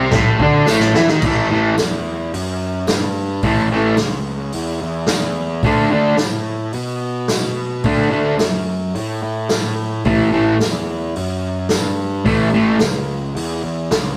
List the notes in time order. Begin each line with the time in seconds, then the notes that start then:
Already playing: C2 C3 C4
0.11 A1 A2 A3, kick, snare, crash
0.40 D2 D3 D4, kick
0.66 A1 A2 A3, snare, tambourine
0.80 snare
0.94 E2 E3 E4, snare
1.08 D#2 D#3 D#4, snare
1.22 A1 A2 E3, kick, crash
1.26 A3
1.51 A2 E3 A3
1.78 E2, snare, open hi-hat, tambourine
2.34 F#2, open hi-hat
2.87 G2, snare, open hi-hat, tambourine
3.43 A1 A2 E3 A3, kick, open hi-hat
3.72 A2 E3 A3
3.97 C#2, snare, open hi-hat, tambourine
4.52 E2, open hi-hat
4.81 E2
5.07 E2, snare, open hi-hat, tambourine
5.63 D2 D3 A3 D4, kick, open hi-hat
5.91 D3 A3 D4
6.17 A2, snare, open hi-hat, tambourine
6.73 B2, open hi-hat
7.28 B2, snare, open hi-hat, tambourine
7.84 D2 D3 A3 D4, kick, open hi-hat
8.11 D3 A3 D4
8.39 F#2, snare, open hi-hat, tambourine
8.95 A2, open hi-hat
9.22 A2
9.49 A2, snare, open hi-hat, tambourine
10.05 A1 A2 E3 A3, kick, open hi-hat
10.32 A2 E3 A3
10.60 E2, snare, open hi-hat, tambourine
11.16 F#2, open hi-hat
11.69 G2, snare, open hi-hat, tambourine
12.25 A1 A2 E3 A3, kick, open hi-hat
12.53 A2 E3 A3
12.79 C#2, snare, open hi-hat, tambourine
13.35 E2, open hi-hat
13.64 E2
13.91 C#2, snare, open hi-hat, tambourine